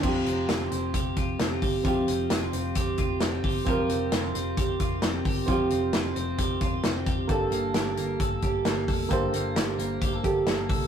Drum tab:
CC |x-------|--------|--------|--------|
HH |-xxxxxxo|xxxxxxxo|xxxxxxxo|xxxxxxxx|
SD |--o---o-|--o---o-|--o---o-|--o---o-|
BD |o---oo-o|o---oo-o|o---oo-o|o---oo-o|

CC |--------|--------|
HH |xxxxxxxo|xxxxxxxo|
SD |--o---o-|--o---o-|
BD |o---oo-o|o---oo-o|